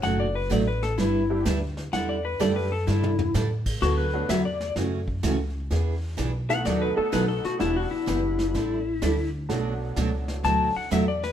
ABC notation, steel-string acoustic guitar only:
X:1
M:4/4
L:1/8
Q:"Swing" 1/4=127
K:Bm
V:1 name="Steel-string acoustic guitar"
[B,,F,A,^DF] z [B,,F,A,DF] z [G,=DEB] z [G,DEB] z | [D,G,DEA] z [D,G,DEA] z [D,G,DEA] z [D,G,DEA] z | [D,F,B,FA] z [D,F,B,FA] z [C,E,A,CF] z [C,E,A,CF] z | [E,B,D^G] z [E,B,DG] z [^D,F,B,^DA] z [D,F,B,DA] z |
[E,B,DG] z [E,B,DG] z [D,G,DEA] z [D,G,DEA] z | [B,,F,A,DF] z [B,,F,A,DF] z [B,,F,A,DF] z [B,,F,A,DF] z |]